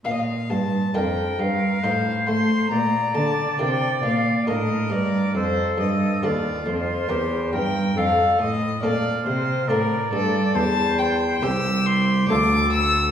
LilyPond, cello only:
\new Staff \with { instrumentName = "Cello" } { \clef bass \time 3/4 \key bes \major \tempo 4 = 69 bes,8 g,8 f,8 g,8 a,8 a8 | bes,8 d8 c8 bes,8 a,8 g,8 | f,8 g,8 ees,8 f,8 e,8 g,8 | f,8 a,8 bes,8 c8 a,8 g,8 |
\key c \mixolydian e,4 c,4 d,4 | }